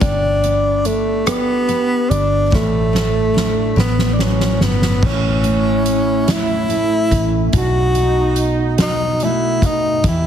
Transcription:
Already playing: steel-string acoustic guitar B3 D4
0.00 fingered electric bass G1, steel-string acoustic guitar G3, tenor saxophone D4, kick, closed hi-hat
0.44 steel-string acoustic guitar B3, closed hi-hat
0.85 tenor saxophone A3, steel-string acoustic guitar D4, closed hi-hat
1.26 tenor saxophone B3, steel-string acoustic guitar G4, cross-stick, closed hi-hat
1.68 steel-string acoustic guitar B3, closed hi-hat
2.10 fingered electric bass G1, tenor saxophone D4, steel-string acoustic guitar D4, closed hi-hat
2.51 fingered electric bass A1, steel-string acoustic guitar A2, tenor saxophone A3, kick, snare
2.93 steel-string acoustic guitar A3, snare
3.34 steel-string acoustic guitar D4, snare
3.76 fingered electric bass A1, steel-string acoustic guitar A2, tenor saxophone B3, snare
3.99 snare
4.14 tenor saxophone D4
4.19 steel-string acoustic guitar F#3, tenor saxophone C#4, snare
4.40 snare
4.61 fingered electric bass G1, tenor saxophone B3, steel-string acoustic guitar C#4, snare
4.82 snare
5.02 fingered electric bass A1, steel-string acoustic guitar A2 E4, tenor saxophone C#4, french horn section E4, kick, crash
5.44 steel-string acoustic guitar A3, closed hi-hat
5.86 steel-string acoustic guitar C#4, closed hi-hat
6.28 steel-string acoustic guitar E4, tenor saxophone E4, snare, closed hi-hat
6.68 steel-string acoustic guitar A3, closed hi-hat
7.10 fingered electric bass A1, steel-string acoustic guitar C#4, kick, closed hi-hat
7.53 fingered electric bass B1, steel-string acoustic guitar B2 F#4, french horn section D#4, kick, closed hi-hat
7.58 tenor saxophone F#4
7.95 steel-string acoustic guitar A3, closed hi-hat
8.36 closed hi-hat
8.78 tenor saxophone D#4, steel-string acoustic guitar F#4, snare, closed hi-hat
9.20 steel-string acoustic guitar A3, tenor saxophone E4, closed hi-hat
9.62 fingered electric bass D#2, steel-string acoustic guitar D#4, tenor saxophone D#4, kick, closed hi-hat
10.04 fingered electric bass E2, steel-string acoustic guitar E3 G4, french horn section G4, kick, closed hi-hat
10.08 tenor saxophone E4

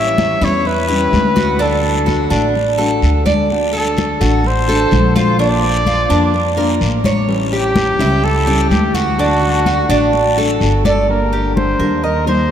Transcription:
Already playing: upright bass A1, nylon-string guitar E3 G3 C#4 E4, cuban tres G4, trumpet E5
0.18 high conga, short guiro
0.41 upright bass E2, nylon-string guitar G3 C#4 E4, cuban tres E4, trumpet C#5, high conga, short guiro
0.65 trumpet B4, muted nylon-string guitar stroke, high conga, long guiro
0.88 nylon-string guitar G3 C#4 E4, cuban tres G4, high conga
1.12 upright bass D2, nylon-string guitar E3 G3 C#4 E4, high conga, short guiro
1.36 cuban tres F#4, high conga, short guiro
1.59 nylon-string guitar D3 A3 D4 F#4, cuban tres D4, trumpet A4, high conga, long guiro
1.84 high conga
2.06 cuban tres F#4, high conga, short guiro
2.30 upright bass A1, nylon-string guitar A3 D4 F#4, cuban tres D4, short guiro
2.55 muted nylon-string guitar stroke, high conga, long guiro
2.78 nylon-string guitar A3 D4 F#4, cuban tres A4, high conga
3.02 upright bass D2, nylon-string guitar D3 A3 D4 F#4, high conga, short guiro
3.26 cuban tres D5, high conga, short guiro
3.50 nylon-string guitar D3 A3 D4 F#4, high conga, long guiro
3.73 cuban tres A4, trumpet A4, high conga
3.97 high conga, short guiro
4.21 upright bass A1, nylon-string guitar A3 D4 F#4, cuban tres F#4, high conga, short guiro
4.44 trumpet C5, muted nylon-string guitar stroke, high conga, long guiro
4.68 nylon-string guitar A3 D4 F#4, cuban tres A4, high conga
4.91 upright bass A#1, nylon-string guitar D3 A3 D4 F#4, high conga, short guiro
5.15 cuban tres F4, trumpet C5, high conga, short guiro
5.38 nylon-string guitar F3 A#3 D4 F4, cuban tres D4, trumpet D5, high conga, long guiro
5.63 high conga
5.86 cuban tres F4, high conga, short guiro
6.09 upright bass F2, nylon-string guitar A#3 D4 F4, cuban tres D4, short guiro
6.33 muted nylon-string guitar stroke, high conga, long guiro
6.57 nylon-string guitar A#3 D4 F4, cuban tres A#4, high conga
6.80 upright bass A1, nylon-string guitar F3 A#3 D4 F4, high conga, short guiro
7.04 cuban tres C#5, high conga, short guiro
7.28 nylon-string guitar E3 G3 C#4 E4, high conga, long guiro
7.52 trumpet G4, cuban tres G4, high conga
7.76 high conga, short guiro
7.99 upright bass C#2, nylon-string guitar G3 C#4 E4, cuban tres E4, high conga, short guiro
8.23 trumpet A4, muted nylon-string guitar stroke, high conga, long guiro
8.47 nylon-string guitar G3 C#4 E4, cuban tres G4, high conga
8.70 upright bass D2, nylon-string guitar E3 G3 C#4 E4, trumpet G4, high conga, short guiro
8.94 trumpet F#4, cuban tres F#4, high conga, short guiro
9.18 nylon-string guitar D3 A3 D4 F#4, cuban tres D4, high conga, long guiro
9.42 high conga
9.66 cuban tres F#4, high conga, short guiro
9.89 upright bass A1, nylon-string guitar A3 D4 F#4, cuban tres D4, short guiro
10.13 muted nylon-string guitar stroke, high conga, long guiro
10.37 nylon-string guitar A3 D4 F#4, cuban tres A4, high conga
10.60 upright bass G1, nylon-string guitar D3 A3 D4 F#4, high conga, short guiro
10.85 trumpet A4, cuban tres D5, high conga, short guiro
11.08 nylon-string guitar D3 G3 A#3 D4 G4, trumpet A#4, high conga
11.33 cuban tres G4, high conga
11.56 trumpet C5, high conga
11.79 upright bass D#2, nylon-string guitar G3 A#3 D4 G4, cuban tres A#4, high conga
12.03 trumpet A#4, cuban tres D#5, muted nylon-string guitar stroke, high conga
12.26 nylon-string guitar G3 A#3 D#4 G4, cuban tres A#4, trumpet C5, high conga

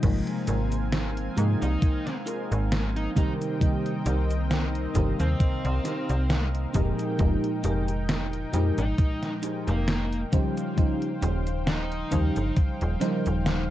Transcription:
0.02 fm bass G#1, fm electric piano C3 F3 G#3 A#3 D#4, analog synth pad C4 A#4 F5 G#5, kick, closed hi-hat, crash, cabasa
0.27 closed hi-hat
0.47 fm bass G#1, clean electric guitar F4 G#4 A#4 C5, closed hi-hat, cabasa
0.72 closed hi-hat, cabasa
0.92 snare, closed hi-hat, cabasa
1.17 closed hi-hat
1.36 fm bass G#2, fm electric piano C3 F3 G#3 A#3 D#4, clean electric guitar F4 G#4 A#4 D#5, closed hi-hat, cabasa
1.61 fm bass C2, lead electric guitar D#4, closed hi-hat, cabasa
1.82 kick, closed hi-hat, cabasa
2.07 snare, closed hi-hat
2.26 clean electric guitar F4 G#4 A#4 D#5, closed hi-hat, cabasa
2.52 fm bass G#1, closed hi-hat, cabasa
2.72 snare, closed hi-hat, cabasa
2.96 lead electric guitar D#4, closed hi-hat
3.15 fm electric piano C3 D#3 G3 A#3 D#4, analog synth pad C4 D#5 G5, clean electric guitar D#4 G4 A#4 C5, lead electric guitar D#4, kick, closed hi-hat, cabasa
3.42 closed hi-hat, cabasa
3.59 fm electric piano C3 D#3 G3 A#3 D#4, kick, closed hi-hat, cabasa
3.86 closed hi-hat
4.05 fm bass C2, clean electric guitar D#4 G4 A#4 C5, closed hi-hat, cabasa
4.31 closed hi-hat, cabasa
4.51 snare, closed hi-hat, cabasa
4.75 closed hi-hat
4.93 fm bass G1, fm electric piano C3 D#3 G3 A#3 D#4, clean electric guitar D#4 G4 A#4 C5, analog synth pad F5, kick, closed hi-hat, cabasa
5.20 fm bass D#2, lead electric guitar C4, closed hi-hat, cabasa
5.40 kick, closed hi-hat, cabasa
5.65 fm bass C2, closed hi-hat
5.84 clean electric guitar D#4 G4 A#4 C5, snare, closed hi-hat, cabasa
6.09 fm bass C2, closed hi-hat, cabasa
6.30 snare, closed hi-hat, cabasa
6.55 closed hi-hat
6.73 fm bass F1, fm electric piano A#2 F3 G#3 D#4, clean electric guitar D#4 G4 G#4 A#4, analog synth pad D#4 G5, kick, closed hi-hat, cabasa
6.99 closed hi-hat, cabasa
7.17 fm bass F1, fm electric piano A#2 F3 G#3 D#4, kick, closed hi-hat, cabasa
7.44 closed hi-hat
7.63 fm bass F1, clean electric guitar D#4 G4 G#4 A#4, closed hi-hat, cabasa
7.88 closed hi-hat, cabasa
8.09 snare, closed hi-hat, cabasa
8.33 closed hi-hat
8.52 fm bass F2, fm electric piano A#2 F3 G#3 D#4, clean electric guitar D#4 G4 G#4 A#4, closed hi-hat, cabasa
8.78 fm bass G#1, lead electric guitar D#4, closed hi-hat, cabasa
8.98 kick, closed hi-hat, cabasa
9.23 snare, closed hi-hat
9.42 clean electric guitar D#4 G4 G#4 C5, closed hi-hat, cabasa
9.67 fm bass F1, lead electric guitar A#3, closed hi-hat, cabasa
9.88 snare, closed hi-hat, cabasa
10.13 closed hi-hat
10.32 fm electric piano C#3 F3 G3 D#4 C5, clean electric guitar C#4 F4 G4 C5, analog synth pad C5 F5 G5, kick, closed hi-hat, cabasa
10.57 closed hi-hat, cabasa
10.76 fm electric piano C#3 F3 G3 D#4 C5, kick, closed hi-hat, cabasa
11.02 closed hi-hat
11.21 fm bass D#1, clean electric guitar C#4 F4 G4 C5, closed hi-hat, cabasa
11.47 closed hi-hat, cabasa
11.67 lead electric guitar D#4, snare, closed hi-hat, cabasa
11.92 closed hi-hat
12.11 fm bass D#2, fm electric piano C#3 F3 G3 D#4 C5, clean electric guitar C#4 F4 G4 C5, kick, closed hi-hat, cabasa
12.36 fm bass G1, closed hi-hat, cabasa
12.57 kick, closed hi-hat, cabasa
12.81 fm bass D#1, closed hi-hat
13.00 fm electric piano C#3 F3 G3 D#4 C5, clean electric guitar C#4 F4 G4 A#4, snare, closed hi-hat, cabasa
13.26 fm bass D#1, closed hi-hat, cabasa
13.46 clean electric guitar F5, snare, closed hi-hat, cabasa

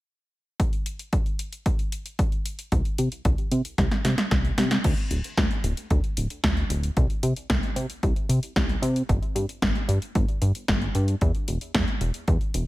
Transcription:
0.60 kick, closed hi-hat
0.73 closed hi-hat
0.86 closed hi-hat
0.99 closed hi-hat
1.13 kick, closed hi-hat
1.26 closed hi-hat
1.39 closed hi-hat
1.53 closed hi-hat
1.66 kick, closed hi-hat
1.79 closed hi-hat
1.92 closed hi-hat
2.06 closed hi-hat
2.19 kick, closed hi-hat
2.32 closed hi-hat
2.46 closed hi-hat
2.59 closed hi-hat
2.72 analog synth bass C2, kick, closed hi-hat
2.85 closed hi-hat
2.98 analog synth bass C3, closed hi-hat
3.12 closed hi-hat
3.25 analog synth bass C2, kick, closed hi-hat
3.38 closed hi-hat
3.51 analog synth bass C3, closed hi-hat
3.65 closed hi-hat
3.78 analog synth bass C2, kick, snare, closed hi-hat
3.91 snare, closed hi-hat
4.05 analog synth bass C3, snare, closed hi-hat
4.18 snare, closed hi-hat
4.31 analog synth bass C2, kick, snare, closed hi-hat
4.45 closed hi-hat
4.58 analog synth bass C3, snare, closed hi-hat
4.71 snare, closed hi-hat
4.84 analog synth bass D2, kick, closed hi-hat, crash
4.98 closed hi-hat
5.11 analog synth bass D1, closed hi-hat
5.24 closed hi-hat
5.37 analog synth bass D2, kick, snare, closed hi-hat
5.51 closed hi-hat
5.64 analog synth bass D1, closed hi-hat
5.77 closed hi-hat
5.90 analog synth bass D2, kick, closed hi-hat
6.04 closed hi-hat
6.17 analog synth bass D1, closed hi-hat
6.30 closed hi-hat
6.44 analog synth bass D2, kick, snare, closed hi-hat
6.57 closed hi-hat
6.70 analog synth bass D1, closed hi-hat
6.83 closed hi-hat
6.97 analog synth bass C2, kick, closed hi-hat
7.10 closed hi-hat
7.23 analog synth bass C3, closed hi-hat
7.36 closed hi-hat
7.50 analog synth bass C2, kick, snare, closed hi-hat
7.63 closed hi-hat
7.76 analog synth bass C3, closed hi-hat
7.90 closed hi-hat
8.03 analog synth bass C2, kick, closed hi-hat
8.16 closed hi-hat
8.29 analog synth bass C3, closed hi-hat
8.43 closed hi-hat
8.56 analog synth bass C2, kick, snare, closed hi-hat
8.69 closed hi-hat
8.82 analog synth bass C3, closed hi-hat
8.96 closed hi-hat
9.09 analog synth bass G1, kick, closed hi-hat
9.23 closed hi-hat
9.35 analog synth bass G2, closed hi-hat
9.49 closed hi-hat
9.62 analog synth bass G1, kick, snare, closed hi-hat
9.76 closed hi-hat
9.89 analog synth bass G2, closed hi-hat
10.02 closed hi-hat
10.15 analog synth bass G1, kick, closed hi-hat
10.29 closed hi-hat
10.42 analog synth bass G2, closed hi-hat
10.55 closed hi-hat
10.68 analog synth bass G1, kick, snare, closed hi-hat
10.82 closed hi-hat
10.95 analog synth bass G2, closed hi-hat
11.08 closed hi-hat
11.21 analog synth bass E2, kick, closed hi-hat
11.35 closed hi-hat
11.48 analog synth bass E1, closed hi-hat
11.61 closed hi-hat
11.75 analog synth bass E2, kick, snare, closed hi-hat
11.88 closed hi-hat
12.01 analog synth bass E1, closed hi-hat
12.14 closed hi-hat
12.28 analog synth bass E2, kick, closed hi-hat
12.41 closed hi-hat
12.54 analog synth bass E1, closed hi-hat

